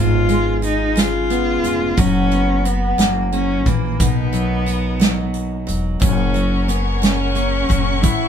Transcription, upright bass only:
0.00 1.60 G#1 loud
1.64 1.96 F1 medium
1.97 2.95 F#1 loud
2.99 3.66 F#1 medium
3.66 3.98 A#1 medium
4.00 5.64 B1 medium
5.69 6.00 E1 medium
6.02 7.66 F#1 medium
7.70 8.02 F#1 medium
8.03 8.28 A1 loud

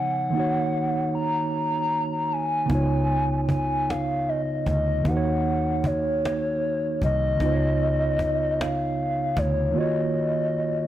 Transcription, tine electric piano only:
0.00 0.28 C#3 medium
0.00 0.32 F3 soft
0.00 0.29 B3 medium
0.00 0.31 D#4 soft
0.00 0.33 C#5 medium
0.30 2.64 D#3 medium
0.30 2.65 A#3 soft
0.35 2.66 D#4 soft
0.35 2.67 F#4 soft
0.40 2.68 C#5 medium
2.66 4.99 C#3 medium
2.66 5.00 B3 medium
2.70 5.01 D#4 soft
2.70 5.03 F4 soft
2.75 5.04 C#5 medium
5.01 7.35 D#3 soft
5.01 7.36 A#3 medium
5.06 7.37 D#4 medium
5.06 7.38 F#4 soft
5.11 5.14 C5 medium
5.17 7.42 C#5 medium
7.37 9.70 C#3 medium
7.37 9.71 B3 medium
7.41 9.72 D#4 soft
7.41 9.73 F4 medium
7.46 7.50 C5 medium
7.52 9.78 C#5 medium
9.71 10.87 D#3 medium
9.71 10.87 A#3 soft
9.76 10.87 F4 soft
9.76 10.87 F#4 soft
9.81 10.87 C#5 medium

